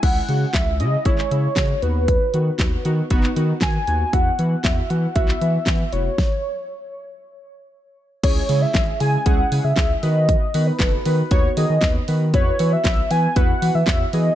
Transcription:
<<
  \new Staff \with { instrumentName = "Soft synth lead" } { \time 4/4 \key cis \minor \tempo 4 = 117 fis''4 e''8 dis''8 cis''4. b'8~ | b'4. r4. gis''4 | fis''4 e''8 fis''8 e''4. cis''8~ | cis''4. r2 r8 |
cis''8. e''8. gis''8 fis''8. e''8. dis''8~ | dis''8. b'8. b'8 cis''8 dis''4 r8 | cis''8. e''8. gis''8 fis''8. e''8. dis''8 | }
  \new Staff \with { instrumentName = "Synth keys" } { \time 4/4 \key cis \minor <gis cis' e'>8 <gis cis' fis'>8 <gis cis' e'>8 <gis cis' e'>8 <gis cis' e'>8 <gis cis' e'>8 <gis cis' fis'>8 <b dis' fis'>8~ | <b dis' fis'>8 <b dis' fis'>8 <b dis' fis'>8 <b dis' fis'>8 <b dis' fis'>8 <b dis' fis'>8 <dis' fis'>8 <b dis' fis'>8 | <b e' fis'>8 <b e' fis'>8 <b e' fis'>8 <b e' fis'>8 <b e' fis'>8 <b e' fis'>8 <b e' fis'>8 <b e' fis'>8 | r1 |
<gis cis' e' gis'>8 <gis cis' e' gis'>8 <gis cis' e' gis'>8 <gis cis' e' gis'>8 <gis cis' e' gis'>8 <gis cis' e' gis'>8 <gis cis' e' gis'>8 <b dis' fis' b'>8~ | <b dis' fis' b'>8 <b dis' fis' b'>8 <b dis' fis' a'>8 <b dis' fis' b'>8 <b dis' fis' cis''>8 <b dis' fis' gis'>8 <b dis' fis' b'>8 <b dis' fis' b'>8 | <b e' fis' b'>8 <b e' fis' b'>8 <b e' fis' b'>8 <b e' fis' b'>8 <b e' fis' b'>8 <b e' fis' b'>8 <b e' fis' cis''>8 <b e' fis' gis'>8 | }
  \new Staff \with { instrumentName = "Sub bass" } { \clef bass \time 4/4 \key cis \minor cis,8 cis8 cis,8 cis8 gis,,8 cis8 cis8 dis,8~ | dis,8 dis8 dis,8 dis8 fis,,8 dis8 dis8 dis,8 | e,8 e8 e,8 e8 b,,8 e8 e8 eis,,8 | r1 |
cis,8 cis8 gis,,8 cis8 cis,8 cis16 cis16 cis,8 dis8~ | dis8 dis8 fis,,8 dis8 dis,8 dis16 dis16 dis,8 dis8 | e,8 e8 b,,8 e8 e,8 e16 e16 e,8 e8 | }
  \new DrumStaff \with { instrumentName = "Drums" } \drummode { \time 4/4 <cymc hh bd>8 hh8 <hc hh bd sn>8 hh8 <hh bd>16 hc16 hh8 <hc hh bd sn>8 hh8 | <hh bd>8 hh8 <hc hh bd sn>8 hh8 <hh bd>16 hc16 hh8 <hc hh bd sn>8 hh8 | <hh bd>8 hh8 <hc hh bd sn>8 hh8 <hh bd>16 hc16 hh8 <hc hh bd sn>8 hh8 | <bd sn>4 r4 r4 r4 |
<cymc hh bd>8 hho8 <hc hh bd sn>8 hho8 <hh bd>8 hho8 <hc hh bd sn>8 hho8 | <hh bd>8 hho8 <hc hh bd sn>8 hho8 <hh bd>8 hho8 <hc hh bd sn>8 hho8 | <hh bd>8 hho8 <hc hh bd sn>8 hho8 <hh bd>8 hho8 <hc hh bd sn>8 hho8 | }
>>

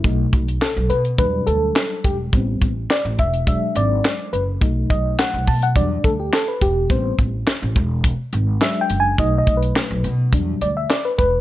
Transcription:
<<
  \new Staff \with { instrumentName = "FM electric piano" } { \time 4/4 \key e \minor \tempo 4 = 105 r4 a'8 b'8 b'8 a'4 g'8 | r4 d''8 e''8 e''8 d''4 b'8 | r8 dis''8 fis''8 a''16 fis''16 d''8 a'16 g'16 a'16 b'16 g'8 | c''8 r2 r8 \tuplet 3/2 { e''8 g''8 gis''8 } |
\tuplet 3/2 { dis''8 dis''8 b'8~ } b'8. r8. d''16 e''16 d''16 b'16 b'8 | }
  \new Staff \with { instrumentName = "FM electric piano" } { \clef bass \time 4/4 \key e \minor <fis a dis'>8 r4. <fis g d'>2 | <g b c'>8 r4. <fis gis d'>4. r8 | <fis a dis'>2 <fis g d'>8 r4. | <g b c'>8 r2 r8 <fis gis d'>4 |
<fis a dis'>2 <fis g d'>8 r4. | }
  \new Staff \with { instrumentName = "Upright bass" } { \clef bass \time 4/4 \key e \minor b,,8 b,,8 r16 b,,16 b,8 e,8 d,8 r8 e,,8 | a,,8 a,,8 r16 a,,16 e,,8. r16 gis,,8 r8 fis,,8 | b,,8 b,,8 r16 b,,16 b,8 e,8 d,8 r8 e,,8 | a,,8 a,,8 r16 a,,16 e,,8. r16 gis,,8 r8 fis,,8 |
b,,8 b,,8 r16 b,,16 b,8 e,8 d,8 r8 e,,8 | }
  \new DrumStaff \with { instrumentName = "Drums" } \drummode { \time 4/4 <hh bd>8 <hh bd>16 hh16 <hc hh sn>8 hh16 hh16 <hh bd>8 hh8 <hc hh sn>8 <hh bd>8 | <hh bd>8 <hh bd>8 <hc hh sn>8 <hh bd>16 hh16 <hh bd>8 hh8 <hc hh sn>8 hh8 | <hh bd>8 <hh bd>8 <hc hh sn>8 <hho bd>16 hh16 <hh bd>8 <hh bd>8 <hc hh sn>8 <hh bd>8 | <hh bd>8 <hh bd>8 <hc hh sn>8 <hh bd>8 <hh bd>8 hh8 <hc hh sn>8 hh8 |
<hh bd>8 <hh bd>16 hh16 <hc hh sn>8 hh8 <hh bd>8 hh8 <hc hh sn>8 <hh bd>8 | }
>>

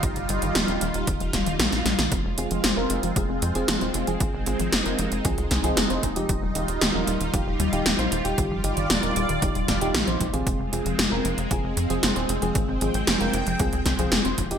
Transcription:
<<
  \new Staff \with { instrumentName = "FM electric piano" } { \time 4/4 \key f \dorian \tempo 4 = 115 r1 | r8 <c' f' aes'>8. <c' f' bes'>8. <c' f' aes'>8. <c' f' aes'>8 <c' f' c''>8 <c' f' aes'>16~ | <c' f' aes'>8 <c' f' aes'>8. <c' f' bes'>8. <c' f' aes'>8. <c' f' aes'>8 <c' f' c''>8 <ees' f' g'>16~ | <ees' f' g'>8 <ees' f' g'>8. <ees' f' bes'>8. <ees' f' g'>8. <ees' f' g'>8 <ees' f' c''>8 <ees' f' g'>16~ |
<ees' f' g'>8 <ees' f' g'>8. <ees' f' bes'>8. <ees' f' g'>8. <ees' f' g'>8 <ees' f' c''>8 <c' f' aes'>16~ | <c' f' aes'>8 <c' f' aes'>8. <c' f' bes'>8. <c' f' aes'>8. <c' f' aes'>8 <c' f' c''>8 <c' f' aes'>16~ | <c' f' aes'>8 <c' f' aes'>8. <c' f' bes'>8. <c' f' aes'>8. <c' f' aes'>8 <c' f' c''>8 <ees' f' g'>16 | }
  \new Staff \with { instrumentName = "Analog synth pad" } { \time 4/4 \key f \dorian << { f'1~ | f'1 | ees'1 | f'1 |
d''1 | r1 | g''1 | } \\ { <g ees'>1 | <aes c'>1~ | <aes c'>1 | g1~ |
g1 | <aes c'>1~ | <aes c'>1 | } >> }
  \new Staff \with { instrumentName = "Synth arpeggio sound" } { \clef bass \time 4/4 \key f \dorian f16 r16 g16 ees16 f16 g16 ees16 r16 ees16 f16 g16 ees16 f16 r16 g16 ees16 | f16 aes16 c'16 f16 aes16 r16 c'16 f16 aes16 c'16 f16 r16 f16 aes16 c'16 f16 | aes16 r16 c'16 f16 aes16 c'16 f16 r16 f16 aes16 c'16 f16 aes16 r16 c'16 f16 | f16 g16 ees16 r16 ees16 f16 g16 ees16 f16 r16 g16 ees16 f16 g16 ees16 r16 |
ees16 f16 g16 ees16 f16 r16 g16 ees16 f16 g16 ees16 r16 ees16 f16 g16 ees16 | aes16 r16 c'16 f16 aes16 c'16 f16 r16 f16 aes16 c'16 f16 aes16 r16 c'16 f16 | aes16 c'16 f16 r16 f16 aes16 c'16 f16 r8 c'16 f16 aes16 c'16 f16 r16 | }
  \new Staff \with { instrumentName = "Analog synth bass" } { \clef bass \time 4/4 \key f \dorian g,,16 g,,16 g,,16 g,,16 ees,,16 ees,,16 ees,,16 ees,,16 ees,,16 ees,,16 ees,,16 ees,,16 bes,,16 bes,,16 bes,,16 bes,,16 | f,,16 f,,16 f,,16 f,,16 f,,16 f,,16 f,,16 f,,16 f,,16 f,,16 f,16 f,,16 f,,16 ees,,16 f,,16 f,,16 | aes,,16 aes,,16 aes,,16 aes,,16 f,,16 f,,16 f,,16 f,,16 c,16 c,16 c,16 c,16 f,,16 f,,16 f,,16 f,,16 | ees,,16 ees,,16 ees,,16 ees,,16 ees,,16 ees,,16 ees,,16 ees,,16 ees,,16 ees,,16 ees,16 ees,,16 ees,,16 bes,,16 ees,,16 ees,,16 |
g,,16 g,,16 g,,16 g,,16 ees,,16 ees,,16 ees,,16 ees,,16 ees,,16 ees,,16 ees,,16 ees,,16 bes,,16 bes,,16 bes,,16 bes,,16 | f,,16 f,,16 f,,16 f,,16 f,,16 f,,16 f,,16 f,,16 f,,16 f,,16 f,16 f,,16 f,,16 ees,,16 f,,16 f,,16 | aes,,16 aes,,16 aes,,16 aes,,16 f,,16 f,,16 f,,16 f,,16 c,16 c,16 c,16 c,16 f,,16 f,,16 f,,16 f,,16 | }
  \new DrumStaff \with { instrumentName = "Drums" } \drummode { \time 4/4 <hh bd>16 hh16 hh16 hh16 <hh sn>16 hh16 hh16 hh16 <hh bd>16 hh16 <hh bd sn>16 hh16 <hh sn>16 <hh sn>16 <hh sn>16 <hh sn>16 | <hh bd>8 hh16 hh16 <hh sn>8 hh16 hh16 <hh bd>8 hh16 hh16 <hh sn>16 hh16 hh16 hh16 | <hh bd>8 hh16 hh16 <hh sn>16 hh16 hh16 hh16 <hh bd>16 hh16 <hh bd sn>16 hh16 <hh sn>16 hh16 <hh bd>16 hh16 | <hh bd>8 hh16 hh16 <hh sn>8 hh16 hh16 <hh bd>8 hh16 hh16 <hh sn>16 hh16 hh16 hh16 |
<hh bd>8 hh16 hh16 <hh sn>16 hh16 hh16 hh16 <hh bd>16 hh16 <hh bd sn>16 hh16 <hh sn>16 hh16 <hh bd>16 hh16 | <hh bd>8 hh16 hh16 <hh sn>8 hh16 hh16 <hh bd>8 hh16 hh16 <hh sn>16 hh16 hh16 hh16 | <hh bd>8 hh16 hh16 <hh sn>16 hh16 hh16 hh16 <hh bd>16 hh16 <hh bd sn>16 hh16 <hh sn>16 hh16 <hh bd>16 hh16 | }
>>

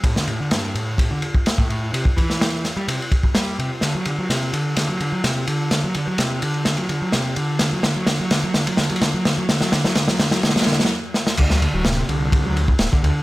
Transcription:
<<
  \new Staff \with { instrumentName = "Picked electric bass" } { \clef bass \time 4/4 \key d \mixolydian \tempo 4 = 127 a,16 d16 a,16 d16 g,8 a,8. d16 r8. a,16 a,8 | c16 r16 e4 r16 g16 c16 r8. g8 c16 r16 | d16 fis16 d16 fis16 c8 d8 d16 fis16 d16 fis16 c8 d8 | d16 fis16 d16 fis16 c8 d8 d16 fis16 d16 fis16 c8 d8 |
d16 fis16 d16 fis16 d16 fis16 d16 fis16 d16 fis16 d16 fis16 d16 fis16 d16 fis16 | d16 fis16 d16 fis16 d16 fis16 d16 fis16 d16 fis16 d16 fis16 r4 | d16 fis16 d16 fis16 c8 d8. fis16 r8. d16 d8 | }
  \new Staff \with { instrumentName = "Detuned saw bass" } { \clef bass \time 4/4 \key d \mixolydian r1 | r1 | r1 | r1 |
r1 | r1 | d,8 r16 d,,8 r16 c,8. d,8 r16 d,,16 r16 d,16 r16 | }
  \new DrumStaff \with { instrumentName = "Drums" } \drummode { \time 4/4 <bd cymr>16 sn16 cymr8 <cymr sn>8 cymr8 <bd cymr>8 cymr16 bd16 <cymr sn>16 bd16 cymr8 | cymr16 bd16 <bd cymr>16 sn16 <cymr sn>8 <cymr sn>16 cymr16 cymr16 cymr16 <bd cymr>16 bd16 <cymr sn>8 cymr8 | <cymr sn>8 cymr8 <cymr sn>8 cymr8 <cymr sn>8 cymr8 <cymr sn>8 cymr8 | <cymr sn>8 cymr8 <cymr sn>8 cymr16 cymr16 <cymr sn>16 cymr16 cymr8 <cymr sn>8 cymr8 |
<cymr sn>8 <cymr sn>8 <cymr sn>8 <cymr sn>8 <cymr sn>16 cymr16 <cymr sn>32 cymr32 cymr32 cymr32 <cymr sn>8 <cymr sn>8 | <cymr sn>16 sn16 <cymr sn>16 sn16 <cymr sn>16 sn16 <cymr sn>16 <cymr sn>16 <cymr sn>32 sn32 <cymr sn>32 sn32 <cymr sn>32 sn32 sn32 sn32 r8 sn16 sn16 | <cymc bd cymr>16 sn16 cymr8 <cymr sn>8 cymr8 <bd cymr>8 cymr16 bd16 <cymr sn>16 bd16 cymr8 | }
>>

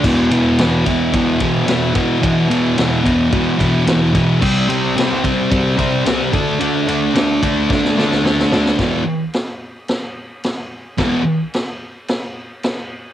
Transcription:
<<
  \new Staff \with { instrumentName = "Distorted electric guitar" } { \clef bass \time 4/4 \key d \lydian \tempo 4 = 110 <e, b, e>8 <e, b, e>8 <e, b, e>8 <e, b, e>8 <e, b, e>8 <e, b, e>8 <e, b, e>8 <e, b, e>8 | <e, b, e>8 <e, b, e>8 <e, b, e>8 <e, b, e>8 <e, b, e>8 <e, b, e>8 <e, b, e>8 <e, b, e>8 | <c g c'>8 <c g c'>8 <c g c'>8 <c g c'>8 <c g c'>8 <c g c'>8 <c g c'>8 <d a d'>8 | <d a d'>8 <d a d'>8 <d a d'>8 <d a d'>8 <d a d'>8 <d a d'>8 <d a d'>8 <d a d'>8 |
<e, b, e>8 r2. r8 | <e, b, e>8 r2. r8 | }
  \new DrumStaff \with { instrumentName = "Drums" } \drummode { \time 4/4 <cymc bd>8 cymr8 <cymr sn>8 <bd cymr>8 <bd cymr>8 <bd cymr>8 <cymr sn>8 <bd cymr>8 | <bd cymr>8 cymr8 <cymr sn>8 <bd cymr>8 <bd cymr>8 <bd cymr>8 <cymr sn>8 <bd cymr>8 | <cymc bd>8 cymr8 <cymr sn>8 <bd cymr>8 <bd cymr>8 <bd cymr>8 <cymr sn>8 <bd cymr>8 | cymr8 cymr8 <cymr sn>8 <bd cymr>8 <bd sn>16 sn16 sn16 sn16 sn16 sn16 sn16 sn16 |
<cymc bd sn>4 <cymc sn>4 <cymc sn>4 <cymc sn>4 | <cymc bd sn>4 <cymc sn>4 <cymc sn>4 <cymc sn>4 | }
>>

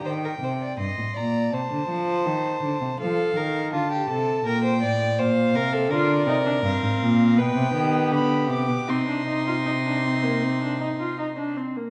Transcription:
<<
  \new Staff \with { instrumentName = "Violin" } { \time 4/4 \key c \minor \tempo 4 = 81 g''4 c'''8 bes''8 a''2 | f''4 a''4 g''4 f''4 | d''4 f''4 g''4 b''8 d'''8 | c'''2.~ c'''8 r8 | }
  \new Staff \with { instrumentName = "Violin" } { \time 4/4 \key c \minor c''16 bes'16 c''16 d''16 ees''8 d''8 c''2 | a'8 bes'8 f'16 g'16 a'8 bes'16 c''16 d''8 c''8 bes'16 a'16 | bes'2 b'8 g'4. | ees'2.~ ees'8 r8 | }
  \new Staff \with { instrumentName = "Viola" } { \time 4/4 \key c \minor r1 | r1 | f'8 ees'16 d'16 c'4 b2 | c'16 d'16 ees'16 f'16 ees'16 d'16 c'16 bes16 c'16 d'16 ees'16 f'16 ees'16 d'16 c'16 bes16 | }
  \new Staff \with { instrumentName = "Cello" } { \clef bass \time 4/4 \key c \minor ees8 c8 g,16 a,16 bes,8 c16 d16 f8 ees8 d16 c16 | f8 ees8 d8 c8 bes,8 a,8 bes,8 c8 | d8 c8 g,16 aes,16 bes,8 b,16 c16 ees8 d8 c16 b,16 | c2.~ c8 r8 | }
>>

